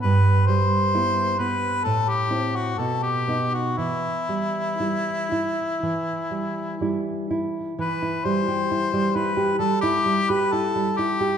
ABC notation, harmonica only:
X:1
M:4/4
L:1/16
Q:1/4=65
K:Em
V:1 name="Harmonica"
B2 c4 B2 A G2 F A G2 F | E12 z4 | B2 c4 B2 A G2 B A2 G2 |]